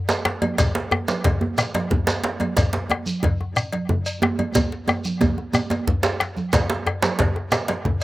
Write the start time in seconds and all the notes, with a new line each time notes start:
0.09 cowbell, djembe slap, shekere
0.25 bombo rim, djembe slap, high conga
0.42 bombo rim, cowbell, djembe tone, high conga
0.58 bombo low, cowbell, djembe slap, djembe bass, low conga, shekere
0.75 djembe slap
0.91 bombo rim, djembe tone
1.08 djembe slap, high conga, shekere
1.24 bombo rim, bombo low, cowbell, djembe slap, djembe bass, low conga
1.41 bombo rim, djembe slap, djembe tone
1.58 bombo rim, cowbell, djembe slap, shekere
1.74 bombo rim, cowbell, djembe slap, high conga
1.91 bombo rim, bombo low, djembe tone, djembe bass, low conga
2.07 cowbell, djembe slap, shekere
2.24 djembe slap, high conga
2.40 bombo rim, cowbell, djembe tone, high conga
2.57 bombo low, cowbell, djembe slap, low conga, djembe bass, shekere
2.73 djembe slap
2.90 bombo rim, cowbell, djembe tone
3.06 djembe slap, high conga, shekere
3.23 bombo rim, bombo low, cowbell, djembe slap, low conga, djembe bass
3.41 bombo rim, djembe slap, djembe tone
3.56 bombo rim, cowbell, shekere
3.72 bombo rim, cowbell, djembe slap, high conga
3.89 bombo rim, djembe tone, low conga, djembe bass
4.06 cowbell, shekere
4.22 bombo rim, djembe slap, djembe tone, high conga
4.39 bombo rim, cowbell, djembe tone, high conga
4.55 bombo low, cowbell, djembe tone, high conga, low conga, djembe bass, shekere
4.72 djembe slap
4.88 bombo rim, cowbell, djembe tone, high conga, shekere
5.05 bombo rim, djembe slap, high conga, shekere
5.21 bombo low, cowbell, djembe slap, djembe tone, djembe bass, low conga, shekere
5.38 djembe slap, djembe tone, high conga
5.53 bombo rim, cowbell, djembe tone, shekere
5.70 cowbell, djembe slap, djembe tone, shekere
5.87 bombo low, djembe slap, high conga, djembe tone, low conga, djembe bass
6.03 cowbell, djembe slap, shekere
6.20 bombo rim, djembe slap, high conga, shekere
6.37 high conga, djembe tone, shekere
6.53 bombo low, cowbell, djembe slap, low conga, djembe bass, shekere
6.70 djembe slap
6.86 bombo rim, cowbell, djembe tone
7.02 djembe slap, high conga, shekere
7.19 bombo rim, bombo low, cowbell, djembe slap, low conga, djembe bass
7.36 bombo rim, djembe slap, djembe tone
7.52 bombo rim, cowbell, djembe slap, shekere
7.68 bombo rim, cowbell, djembe slap, high conga
7.85 bombo rim, bombo low, djembe tone, low conga, djembe bass